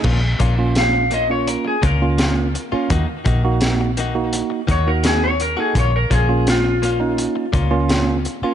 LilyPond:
<<
  \new Staff \with { instrumentName = "Clean electric guitar" } { \time 4/4 \key bes \minor \tempo 4 = 84 r4 f''8 ees''16 des''16 bes'16 aes'16 bes'4.~ | bes'8 r2 des''16 bes'16 aes'16 des''16 bes'16 aes'16 | des''16 bes'16 aes'8 f'2 r4 | }
  \new Staff \with { instrumentName = "Clean electric guitar" } { \time 4/4 \key bes \minor <bes, bes des' f'>16 r16 <bes, bes des' f'>16 r8. <bes, bes des' f'>16 r8. <bes, bes des' f'>16 r16 <bes, bes des' f'>16 r8 <bes des' f'>16 | <ees bes ees' ges'>16 r16 <ees bes ees' ges'>16 r8. <ees bes ees' ges'>16 r8. <ees bes ees' ges'>16 r16 <ees bes ees' ges'>16 r8 <bes ees' ges'>16 | <bes, bes des' f'>16 r16 <bes, bes des' f'>16 r8. <bes, bes des' f'>16 r8. <bes, bes des' f'>16 r16 <bes, bes des' f'>16 r8 <bes des' f'>16 | }
  \new Staff \with { instrumentName = "Tine electric piano" } { \time 4/4 \key bes \minor r8. <bes des' f'>8. r16 <bes des' f'>8. r16 <bes des' f'>8. r16 <bes des' f'>16 | r8. <bes ees' ges'>8. r16 <bes ees' ges'>8. r16 <bes ees' ges'>8. r16 <bes ees' a'>16 | r8. <bes des' f'>8. r16 <bes des' ees'>8. r16 <bes des' f'>8. r16 <bes des' f'>16 | }
  \new Staff \with { instrumentName = "Fingered electric bass" } { \clef bass \time 4/4 \key bes \minor bes,,8 bes,,2 des,4~ des,16 r16 | ees,16 r16 bes,,2 ees,4. | bes,,8 bes,,2 des,4~ des,16 r16 | }
  \new DrumStaff \with { instrumentName = "Drums" } \drummode { \time 4/4 <cymc bd>8 <hh bd>8 <hh sn>8 hh8 hh8 <hh bd>8 <hh sn>8 hh8 | <hh bd>8 <hh bd>8 <hh sn>8 hh8 hh8 <hh bd>8 <hh sn>8 hh8 | <hh bd>8 <hh bd>8 <hh sn>8 hh8 hh8 <hh bd>8 <hh sn>8 hh8 | }
>>